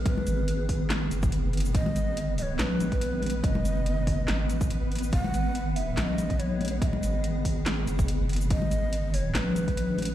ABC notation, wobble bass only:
X:1
M:4/4
L:1/8
Q:"Swing 16ths" 1/4=142
K:G#m
V:1 name="Wobble bass" clef=bass
z G,,,4 F,,,3 | G,,,4 A,,,4 | F,,,4 G,,,4 | G,,,4 A,,,4 |
z G,,,4 F,,,3 | G,,,4 A,,,4 |]